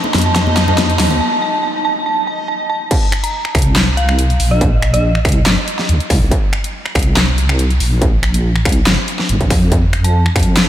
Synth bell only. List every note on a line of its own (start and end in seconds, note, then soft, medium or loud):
0.26 0.34 A5 medium
0.68 0.77 A5 medium
1.11 1.19 A5 medium
1.21 1.40 A5 medium
1.42 1.62 A5 loud
1.63 1.83 A5 medium
1.85 2.04 A5 medium
2.06 2.26 A5 loud
2.27 2.47 A5 medium
2.48 2.68 A5 medium
2.70 2.89 A5 medium
3.23 3.55 A#5 medium
3.97 4.30 F5 medium
4.51 4.82 D#5 medium
4.93 5.25 D#5 medium
10.04 10.36 A5 medium